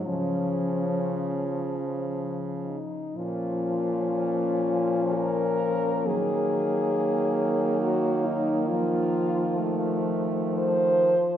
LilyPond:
<<
  \new Staff \with { instrumentName = "French horn" } { \time 3/4 \key des \major \tempo 4 = 64 des'2 r8 ees'8 | \key bes \minor f'2 bes'4 | aes'2 ges'8 ees'8 | f'4. r8 c''4 | }
  \new Staff \with { instrumentName = "French horn" } { \time 3/4 \key des \major f2~ f8 r8 | \key bes \minor des'2. | bes2.~ | bes4 a4. r8 | }
  \new Staff \with { instrumentName = "French horn" } { \clef bass \time 3/4 \key des \major f2~ f8 r8 | \key bes \minor f2. | ges2. | f2. | }
  \new Staff \with { instrumentName = "French horn" } { \clef bass \time 3/4 \key des \major des2~ des8 r8 | \key bes \minor bes,2. | ees2.~ | ees2~ ees8 r8 | }
>>